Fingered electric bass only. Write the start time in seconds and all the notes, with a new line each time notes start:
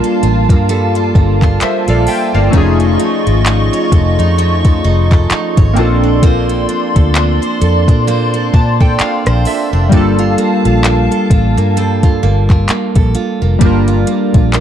0.23 A1
0.50 G2
1.15 G1
1.62 muted fingered electric bass stroke
1.88 A#1
2.35 G1
2.54 F1
3.27 G#1
3.92 F1
4.19 F2
4.85 F1
5.31 muted fingered electric bass stroke
5.58 G#1
5.77 A#1
6.96 D2
7.62 F2
7.88 A#2
8.54 A#2
9.00 muted fingered electric bass stroke
9.27 A#1
9.73 F1
9.92 G1
10.65 A#1
11.31 A1
11.58 G2
12.23 G1
12.69 muted fingered electric bass stroke
12.96 A#1
13.42 F1
13.61 G1
14.35 A#1